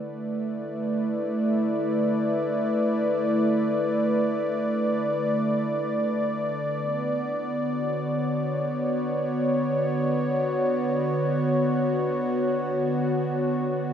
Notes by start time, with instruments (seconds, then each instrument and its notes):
Already playing: synth drone D3, analog synth pad A3 E4 B4 D5 E5 F#5
6.77 analog synth pad B3
7.51 analog synth pad F#4 C#5